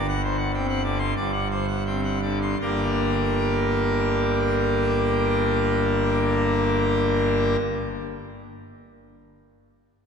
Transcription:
Already playing: G1 G2
0.08 F#5
0.23 C5
0.38 F#5
0.54 C4 G5
0.68 F#5
0.83 D3 D5
0.99 C6
1.16 G1 G2 D5
1.32 F#5
1.51 C5
1.68 F#5
1.86 C4 G5
2.04 F#5
2.22 D3 D5
2.42 C6
2.61 G1 G2 D3 A#3 D4 G4 A#4

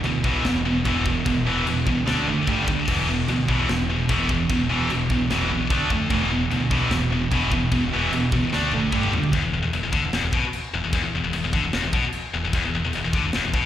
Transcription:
0.03 D2 E2 B2, china
0.24 B1 E2 B2 E3, kick
0.44 E1 E2 B2, snare, china
0.65 E2 B2
0.85 E1 E2 B2 E3, kick, china
1.06 E2 B2, kick
1.26 E1 E2 B2, kick, china
1.45 E1 E2 B2 E3
1.66 E1 E2 B2, china
1.86 C2 E2 B2, kick
2.06 D2 D3 A3 D4, snare, china
2.26 F#1 D3 A3
2.47 G1 G2 D3 G3, kick, china
2.67 D2 G2 D3, kick
2.88 E1 E2 B2 E3, kick, china, crash
3.09 E2 B2
3.28 D2 E2 B2, china
3.48 B1 E2 B2 E3, kick
3.69 E1 E2 B2, snare, china
3.90 E2 B2
4.09 E1 E2 B2 E3, kick, china
4.29 E2 B2, kick
4.49 E1 E2 B2, kick, china
4.70 E1 E2 B2 E3
4.90 E1 E2 B2, china
5.10 B1 E2 B2, kick
5.30 E1 E2 B2 E3, snare, china
5.50 B1 E2 B2
5.70 D2 D3 A3 D4, kick, china
5.90 F2 D3 A3, kick
6.10 E1 E2 B2 E3, kick, china
6.31 E2 B2
6.51 D2 E2 B2, china
6.70 B1 E2 B2 E3, kick
6.90 E1 E2 B2, snare, china
7.12 E2 B2
7.31 E1 E2 B2 E3, kick, china
7.52 E2 B2, kick
7.71 E1 E2 B2, kick, china
7.91 E1 E2 B2 E3
8.11 E1 E2 B2, china
8.32 C#2 E2 B2, kick
8.52 D2 D3 A3 D4, snare
8.72 F1 D3 A3, high tom
8.92 G1 G2 D3 G3, kick, mid tom
9.03 mid tom
9.13 D2 G2 D3, floor tom
9.23 floor tom
9.33 E1 E2, kick, china
9.43 E1 E2
9.53 E1 E2
9.63 E1 E2
9.73 E1 E2, china
9.83 E1 E2
9.93 D2 D3, kick
10.03 E1 E2
10.13 E1 E2, snare, china
10.23 E1 E2
10.33 B1 B2, kick
10.53 china
10.73 E1 E2
10.84 E1 E2
10.93 E1 E2, kick, china
11.04 E1 E2
11.13 E1 E2
11.24 E1 E2
11.33 E1 E2, china
11.43 E1 E2
11.53 D2 D3, kick
11.63 E1 E2
11.73 E1 E2, snare, china
11.83 E1 E2
11.93 B1 B2, kick
12.13 china
12.34 E1 E2
12.43 E1 E2
12.53 E1 E2, kick, china
12.63 E1 E2
12.73 E1 E2
12.84 E1 E2
12.93 E1 E2, china
13.03 E1 E2
13.13 D2 D3, kick
13.24 E1 E2
13.33 E1 E2, snare, china
13.44 E1 E2
13.53 B1 B2, kick

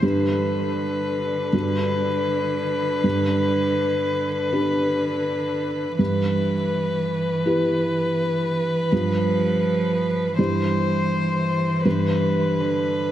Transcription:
0.02 G2 D3 D4 G4 B4
1.53 G2 D4 F#4 B4
3.04 G2
4.52 D4 G4 B4
5.99 G2 E3 B4
7.46 E4 G4 B4
8.92 G2 F3 F4 G4 B4
10.38 G2 E3 E4 G4 C5
11.85 G2 D4 G4 B4
12.60 D3

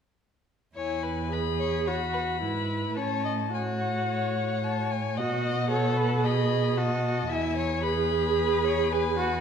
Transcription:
0.75 E2 E4 C#5 G#5
1.03 B4
1.31 G#4 B4 B5
1.59 C#5
1.87 F#4 C#5 B5
2.13 B4
2.41 G#2 E4 B4
2.96 A2 C#4 C#5 A5
3.25 D#5
3.54 F#4 C#5 G#5
3.81 F#5
4.09 C#5
4.63 A5
4.91 G#5
5.17 B2 F#4 D#5 F#5
5.44 D#5
5.71 A4 C#5
5.97 B4
6.24 G#4 D#5 B5
6.77 F#4 D#5 A5
7.29 E2 E4 E5 G#5
7.57 C#5
7.83 G#4 B4 B5
8.37 B4
8.65 C#5
8.92 B4 G#5
9.18 F#4

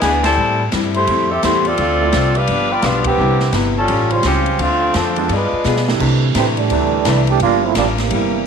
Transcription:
0.01 D2 E3 B3 D4 G#4, snare, hi-hat pedal, ride
0.05 D4 G#4
0.24 G3 C4 E4 A4, snare, ride
0.37 A2 G3 C4 E4
0.72 G2 A2 G3 C4 E4, snare, hi-hat pedal, ride
0.94 A3 E4 G4 C5, ride
1.07 F2 A2 G3 C4, ride
1.12 E4
1.30 C4 G4 A4 E5
1.43 E2 A2 G3 A3 B3 C4 E4 G4 C5, snare, hi-hat pedal, ride
1.65 C4 F4 A4 D5, ride
1.78 D2 D3 A3 C4 F4, ride
2.01 A3 C4 E4 F4
2.13 C2 D3 A3 C4 F4, snare, hi-hat pedal, ride
2.35 D4 G4 B4 F5, ride
2.47 G1 G2 F3 B3, ride
2.52 D4
2.71 F4 B4 D5 G5
2.82 B1 G2 F3 G3 B3 D4 F4, snare, hi-hat pedal, ride
2.86 D4
3.04 E3 G3 B3 C4 D4 G4, kick, ride
3.18 C2 C3 G3 B3 D4 E4 B4
3.40 snare
3.53 G1 C3 G3 B3 E4, snare, hi-hat pedal, ride
3.77 G3 C#4 F4 A4
3.88 A1 A2 G3 C#4, ride
3.93 F4
4.10 C#3 G3 C#4 F4 C5, ride
4.23 C#2 A2 F3 G3 C4 C#4 F4 G4, snare, hi-hat pedal, ride
4.46 ride
4.59 D2 D3 A3 C4 D4 F4, ride
4.94 F2 D3 F3 A3 C4 D4 F4 A4, snare, hi-hat pedal, ride
5.16 G#3 B3 D4 F4, ride
5.29 G2 G3 G#3 B3 D4 F4 G#4 B4, ride
5.53 muted upright bass stroke
5.64 B2 G3 B3 F4 G#4, snare, hi-hat pedal
5.76 snare
5.88 C3 G3 A3 D4 E4, snare
5.99 C3 E3 G3 A3 C4 D4, kick, crash
6.35 A2 C3 E3 G3 A3 C4 D4, snare, hi-hat pedal, ride
6.57 E3 G3 A3 D4, ride
6.70 D2 C3 E3 A3, ride
6.75 D4
7.05 C2 C3 E3 A3 D4, snare, hi-hat pedal, ride
7.27 E3 A3 D4 G4, ride
7.39 G1 G2 F3 G3 A#3 D4 F4, ride
7.44 A#3 D4
7.65 F3 A3 C4 E4
7.75 A1 G2 F3 G3 A#3 D4, snare, hi-hat pedal, ride
7.98 C3 E3 G3 A#3, snare, ride
8.11 G1 C3 G3 A#3, ride
8.15 E4

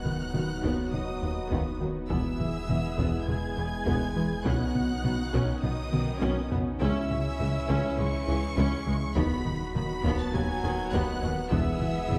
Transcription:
Already playing: D#1 F#3 B3 D#4 F#4 B4 F#5 F#6
0.05 D#3, taiko low-mid
0.33 D#2 D#3 F#4, taiko low-mid
0.63 D#2 B3, taiko
0.92 D#2 F#3 D#4 D#5 D#6, taiko low-mid
1.22 D#2 D#3 B4
1.51 D#2 B3, taiko
1.81 D#2 D#3 F#3 F#4
2.09 E1 E2 E3 G#3 B3 E4 G#4 E5 E6, taiko
2.40 E3, taiko low-mid
2.69 E1 E2 E3 B3, taiko low-mid
2.98 E1 E2 E3 B3, taiko
3.28 E1 E2 G#3 G#5 G#6, taiko low-mid
3.57 E1 E2 E3 E4
3.87 E1 E2 E3 B3, taiko
4.16 E1 E2 E3 G#3 B3
4.45 B1 B2 D#3 B3 C#4 D#4 F#4 C#5 F#5 F#6, taiko
4.75 B3, taiko low-mid
5.04 B1 B2 F#3 B3 F#4, taiko low-mid
5.33 B1 B2 B3 C#4, taiko
5.63 B1 B2 B3 D#4 D#5 D#6, taiko low-mid
5.92 B1 B2 F#3 B4, taiko mid
6.22 B1 B2 B3 C#4, taiko high
6.51 B1 B2 B3 F#4, taiko low
6.81 C#2 C#3 E3 G#3 C#4 E4 G#4 E5 E6, taiko
7.11 C#3, taiko low-mid
7.39 C#2 C#3 E3 G#3, taiko low-mid
7.69 C#2 C#3 C#4, taiko
7.98 C#2 E3 G#3 C#6 C#7, taiko low-mid
8.28 C#2 E3 C#4
8.57 C#2 C#3 C#4, taiko
8.86 C#2 C#3 G#3
9.16 D#1 D#2 F#3 B3 D#4 F#4 B4 B5 B6, taiko
9.45 D#3, taiko low-mid
9.75 D#2 D#3 F#4 B5 B6, taiko low-mid
10.04 D#2 B3, taiko
10.19 A5 A6
10.33 D#2 F#3 D#4 G#5 G#6, taiko low-mid
10.63 D#2 D#3 B4
10.92 D#2 B3 F#5 F#6, taiko
11.22 D#2 D#3 F#3 F#4
11.51 E1 E2 E3 G#3 B3 E4 G#4 E5 E6, taiko
11.81 E3, taiko low-mid
12.10 E1 E2 E3 B3, taiko low-mid

